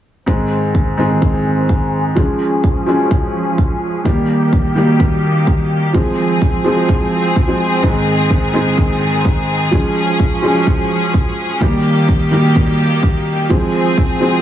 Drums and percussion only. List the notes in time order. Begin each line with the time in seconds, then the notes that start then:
0.28 kick
0.75 kick
1.22 kick
1.69 kick
2.17 kick
2.64 kick
3.11 kick
3.58 kick
4.06 kick
4.53 kick
5.00 kick
5.47 kick
5.95 kick
6.42 kick
6.89 kick
7.36 kick
7.83 kick
8.31 kick
8.78 kick
9.25 kick
9.72 kick
10.20 kick
10.67 kick
11.14 kick
11.61 kick
12.09 kick
12.56 kick
13.03 kick
13.50 kick
13.98 kick